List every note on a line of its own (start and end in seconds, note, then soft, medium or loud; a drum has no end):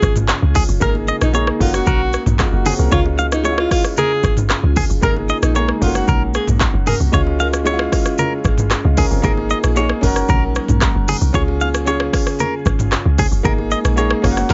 0.00 0.33 G#1 loud
0.00 0.79 C#3 medium
0.00 0.83 G#3 medium
0.00 0.79 C#4 medium
0.00 0.83 C#4 medium
0.00 0.79 F4 medium
0.00 0.83 F4 medium
0.00 0.14 G#4 loud
0.00 0.79 G#4 medium
0.00 kick medium
0.00 cross-stick medium
0.00 shaker soft
0.16 mid tom medium
0.16 low bongo medium
0.16 shaker medium
0.28 cross-stick medium
0.28 clap medium
0.28 high bongo medium
0.28 shaker medium
0.42 0.62 C#2 loud
0.55 0.63 G#4 medium
0.55 kick loud
0.55 open hi-hat medium
0.55 high bongo medium
0.55 low bongo medium
0.55 low conga medium
0.55 shaker medium
0.69 0.78 F#1 loud
0.69 shaker medium
0.80 1.12 G#1 loud
0.80 1.60 G#3 medium
0.80 1.15 A#3 medium
0.80 2.90 A#3 medium
0.80 1.16 D#4 medium
0.80 1.60 D#4 medium
0.80 1.16 G#4 medium
0.80 0.89 A#4 loud
0.80 0.94 A#4 loud
0.80 kick loud
0.80 low conga medium
0.80 shaker medium
0.95 high bongo medium
1.08 1.15 D#5 medium
1.08 low bongo medium
1.08 shaker medium
1.21 1.51 A#1 medium
1.21 1.33 D#4 medium
1.21 cross-stick loud
1.21 shaker medium
1.33 1.60 A#3 medium
1.33 1.60 D#4 medium
1.33 1.61 G#4 medium
1.33 1.48 C#5 medium
1.33 high bongo medium
1.33 shaker medium
1.47 cross-stick medium
1.59 1.80 F#1 loud
1.59 1.66 A3 medium
1.59 2.39 C#4 medium
1.59 4.99 C#4 medium
1.59 1.73 F4 medium
1.59 2.91 F#4 medium
1.59 2.40 F#4 loud
1.59 kick medium
1.59 open hi-hat medium
1.59 shaker soft
1.65 2.42 A#3 medium
1.74 1.85 F#4 medium
1.74 cross-stick medium
1.74 shaker medium
1.87 2.17 A#1 medium
1.87 2.25 F#4 loud
1.87 2.01 A#4 medium
1.87 kick loud
1.87 low conga medium
1.87 shaker medium
2.13 cross-stick medium
2.13 shaker medium
2.26 2.46 A#1 medium
2.26 mid tom loud
2.26 low bongo medium
2.26 shaker medium
2.39 2.53 G#3 medium
2.39 2.52 F4 medium
2.39 kick loud
2.39 cross-stick medium
2.39 clap medium
2.39 high bongo medium
2.39 shaker medium
2.53 2.73 F#1 medium
2.53 2.65 A#3 medium
2.53 2.65 F#4 medium
2.65 2.79 C4 medium
2.65 2.79 G#4 medium
2.65 2.73 G#4 medium
2.65 open hi-hat medium
2.65 high bongo medium
2.65 low bongo medium
2.65 low conga medium
2.65 shaker medium
2.79 2.89 C2 loud
2.79 2.90 C#4 medium
2.79 3.04 A#4 medium
2.79 shaker medium
2.90 3.67 C#2 loud
2.90 5.00 C#3 medium
2.90 3.26 G#3 medium
2.90 3.26 C#4 medium
2.90 5.00 F4 medium
2.90 3.27 F4 medium
2.90 3.04 F4 loud
2.90 5.00 G#4 medium
2.90 2.99 C#5 loud
2.90 kick loud
2.90 low conga medium
2.90 shaker medium
3.06 high bongo medium
3.18 3.26 F5 medium
3.18 low bongo medium
3.18 shaker medium
3.32 3.44 D#4 medium
3.32 cross-stick loud
3.32 shaker medium
3.43 4.12 G#3 medium
3.43 4.13 C#4 medium
3.43 3.52 E4 medium
3.43 3.59 C#5 medium
3.43 high bongo medium
3.43 shaker medium
3.52 4.17 F4 medium
3.58 3.70 F4 medium
3.58 cross-stick loud
3.71 3.83 F4 medium
3.71 kick medium
3.71 cross-stick medium
3.71 open hi-hat medium
3.71 shaker soft
3.84 cross-stick medium
3.84 shaker medium
3.97 4.36 G#4 loud
3.97 4.11 A#4 medium
3.97 low conga medium
3.97 shaker medium
4.24 4.54 G#1 loud
4.24 kick medium
4.24 cross-stick medium
4.24 shaker medium
4.37 mid tom loud
4.37 low bongo medium
4.37 shaker medium
4.50 cross-stick medium
4.50 clap medium
4.50 high bongo medium
4.50 shaker medium
4.63 4.83 C#2 loud
4.76 4.84 G#4 medium
4.76 kick loud
4.76 open hi-hat medium
4.76 high bongo medium
4.76 low bongo medium
4.76 low conga medium
4.76 shaker medium
4.90 4.99 F#1 medium
4.90 shaker medium
5.01 5.33 G#1 loud
5.01 5.81 G#3 medium
5.01 5.36 A#3 medium
5.01 5.80 A#3 medium
5.01 5.37 D#4 medium
5.01 5.81 D#4 medium
5.01 5.37 G#4 medium
5.01 5.10 A#4 loud
5.01 5.15 A#4 loud
5.01 kick loud
5.01 low conga medium
5.01 shaker medium
5.17 high bongo medium
5.29 5.37 D#5 medium
5.29 low bongo medium
5.29 shaker medium
5.42 5.72 A#1 medium
5.42 5.54 D#4 medium
5.42 cross-stick loud
5.42 shaker medium
5.54 5.81 A#3 medium
5.54 5.82 D#4 medium
5.54 5.82 G#4 medium
5.54 5.69 C#5 medium
5.54 high bongo medium
5.54 shaker medium
5.69 cross-stick medium
5.80 6.02 F#1 loud
5.80 5.87 A3 medium
5.80 7.12 A#3 medium
5.80 6.66 C#4 medium
5.80 9.20 C#4 medium
5.80 5.94 F4 medium
5.80 7.12 F#4 medium
5.80 6.67 F#4 medium
5.80 kick medium
5.80 open hi-hat medium
5.80 shaker soft
5.87 6.68 A#3 medium
5.95 6.07 F#4 medium
5.95 cross-stick medium
5.95 shaker medium
6.08 6.38 A#1 medium
6.08 6.22 A#4 medium
6.08 kick loud
6.08 low conga medium
6.08 shaker medium
6.34 6.47 G#4 medium
6.34 cross-stick medium
6.34 shaker medium
6.47 6.68 A#1 medium
6.47 mid tom loud
6.47 low bongo medium
6.47 shaker medium
6.60 kick loud
6.60 cross-stick medium
6.60 clap medium
6.60 high bongo medium
6.60 shaker medium
6.74 6.94 F#1 medium
6.87 6.94 G#4 medium
6.87 6.99 A#4 medium
6.87 mid tom medium
6.87 open hi-hat medium
6.87 high bongo medium
6.87 low bongo medium
6.87 low conga medium
6.87 shaker medium
7.00 7.10 C2 loud
7.00 shaker medium
7.12 7.88 C#2 loud
7.12 9.21 C#3 medium
7.12 7.47 G#3 medium
7.12 7.47 C#4 medium
7.12 9.21 F4 medium
7.12 7.48 F4 loud
7.12 9.21 G#4 loud
7.12 7.21 C#5 loud
7.12 kick loud
7.12 low conga medium
7.12 shaker medium
7.27 high bongo medium
7.40 7.47 F5 medium
7.40 low bongo medium
7.40 shaker medium
7.53 cross-stick loud
7.53 shaker medium
7.64 8.33 G#3 medium
7.64 8.34 C#4 medium
7.64 7.73 E4 medium
7.64 7.80 C#5 medium
7.64 high bongo medium
7.64 shaker medium
7.73 8.38 F4 loud
7.79 cross-stick loud
7.92 kick medium
7.92 cross-stick medium
7.92 open hi-hat medium
7.92 shaker soft
8.06 cross-stick medium
8.06 shaker medium
8.18 8.33 A#4 medium
8.18 low conga medium
8.18 shaker medium
8.44 8.75 G#1 medium
8.44 kick medium
8.44 cross-stick medium
8.44 shaker medium
8.58 mid tom loud
8.58 low bongo medium
8.58 shaker medium
8.71 cross-stick medium
8.71 clap medium
8.71 high bongo medium
8.71 shaker medium
8.85 9.05 C#2 loud
8.85 8.97 G#3 medium
8.85 8.97 F4 medium
8.97 9.10 C#4 medium
8.97 9.05 G#4 medium
8.97 9.10 A#4 medium
8.97 kick loud
8.97 open hi-hat medium
8.97 high bongo medium
8.97 low bongo medium
8.97 low conga medium
8.97 shaker medium
9.11 9.21 F#1 loud
9.11 9.36 C4 medium
9.11 9.23 G#4 medium
9.11 shaker medium
9.22 9.54 G#1 loud
9.22 10.02 G#3 medium
9.22 9.57 A#3 loud
9.22 11.32 A#3 medium
9.22 9.58 D#4 medium
9.22 10.02 D#4 medium
9.22 9.58 G#4 loud
9.22 9.31 A#4 loud
9.22 kick loud
9.22 low conga medium
9.22 shaker medium
9.37 high bongo medium
9.50 9.58 D#5 medium
9.50 low bongo medium
9.50 shaker medium
9.64 9.93 A#1 medium
9.64 cross-stick loud
9.64 shaker medium
9.75 10.02 A#3 medium
9.75 10.03 D#4 medium
9.75 10.03 G#4 loud
9.75 9.90 C#5 medium
9.75 high bongo medium
9.75 shaker medium
9.89 cross-stick medium
10.01 10.23 F#1 loud
10.01 11.33 F#3 medium
10.01 10.86 C#4 loud
10.01 11.33 C#4 medium
10.01 10.87 F#4 medium
10.01 10.87 A#4 loud
10.01 kick medium
10.01 open hi-hat medium
10.01 shaker soft
10.16 cross-stick medium
10.16 shaker medium
10.29 10.59 A#1 loud
10.29 10.43 A#4 medium
10.29 kick loud
10.29 low conga medium
10.29 shaker medium
10.55 cross-stick medium
10.55 shaker soft
10.68 10.89 A#1 medium
10.68 mid tom medium
10.68 low bongo medium
10.68 shaker medium
10.81 kick loud
10.81 cross-stick medium
10.81 clap medium
10.81 high bongo medium
10.81 shaker medium
10.95 11.15 F#1 medium
11.08 11.16 G#4 medium
11.08 open hi-hat medium
11.08 high bongo medium
11.08 low bongo medium
11.08 low conga medium
11.08 shaker medium
11.21 11.31 C2 loud
11.21 shaker medium
11.33 12.09 C#2 loud
11.33 13.43 C#3 medium
11.33 11.68 C#4 loud
11.33 13.42 C#4 medium
11.33 13.42 F4 medium
11.33 11.68 F4 medium
11.33 13.42 G#4 medium
11.33 11.69 G#4 loud
11.33 11.42 C#5 loud
11.33 kick loud
11.33 low conga medium
11.33 shaker medium
11.48 high bongo medium
11.61 11.68 F5 medium
11.61 low bongo medium
11.61 shaker medium
11.74 cross-stick loud
11.74 shaker medium
11.85 12.54 C#4 medium
11.85 12.55 F4 medium
11.85 12.56 G#4 loud
11.85 12.01 C#5 medium
11.85 high bongo medium
11.85 shaker medium
12.00 cross-stick loud
12.13 kick medium
12.13 cross-stick loud
12.13 open hi-hat medium
12.13 shaker soft
12.27 cross-stick medium
12.27 shaker medium
12.39 12.54 A#4 medium
12.39 low conga medium
12.39 shaker medium
12.66 12.96 G#1 loud
12.66 kick medium
12.66 cross-stick medium
12.66 shaker soft
12.79 mid tom loud
12.79 low bongo medium
12.79 shaker medium
12.92 cross-stick medium
12.92 clap medium
12.92 high bongo medium
12.92 shaker medium
13.05 13.25 C#2 loud
13.18 13.26 G#4 medium
13.18 kick loud
13.18 open hi-hat medium
13.18 high bongo medium
13.18 low bongo medium
13.18 low conga medium
13.18 shaker medium
13.32 13.41 F#1 medium
13.32 shaker medium
13.43 13.75 G#1 loud
13.43 14.23 G#3 medium
13.43 13.78 A#3 medium
13.43 14.23 A#3 medium
13.43 13.79 D#4 medium
13.43 14.23 D#4 medium
13.43 13.80 G#4 loud
13.43 13.52 A#4 loud
13.43 kick loud
13.43 low conga medium
13.43 shaker medium
13.58 high bongo medium
13.71 13.79 D#5 medium
13.71 low bongo medium
13.71 shaker medium
13.85 14.14 A#1 medium
13.85 cross-stick loud
13.85 shaker medium
13.96 14.21 A#3 medium
13.96 14.24 D#4 medium
13.96 14.24 G#4 loud
13.96 14.11 C#5 medium
13.96 high bongo medium
13.96 shaker medium
14.10 cross-stick loud
14.22 14.44 F#1 loud
14.22 14.54 F#3 medium
14.22 14.54 A#3 loud
14.22 14.54 A#3 medium
14.22 14.54 C#4 medium
14.22 14.31 F4 medium
14.22 kick medium
14.22 cross-stick medium
14.22 open hi-hat medium
14.22 shaker soft
14.31 14.54 F#4 loud
14.37 cross-stick medium
14.37 low bongo medium
14.37 shaker medium
14.50 14.54 A#1 medium
14.50 kick loud
14.50 snare medium
14.50 low conga medium
14.50 shaker medium